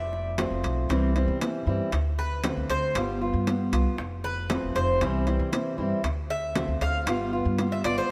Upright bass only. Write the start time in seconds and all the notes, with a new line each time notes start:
Already playing: F1
0.51 F1
0.63 B1
0.89 C2
1.28 C3
1.67 G2
1.92 D2
2.57 D2
2.69 D2
2.95 G1
3.33 G2
3.72 C2
3.98 F1
4.62 F1
4.75 F1
5.01 C2
5.39 C3
5.78 G2
6.04 D2
6.68 D2
6.81 D2
7.06 G1
7.45 G2
7.84 G1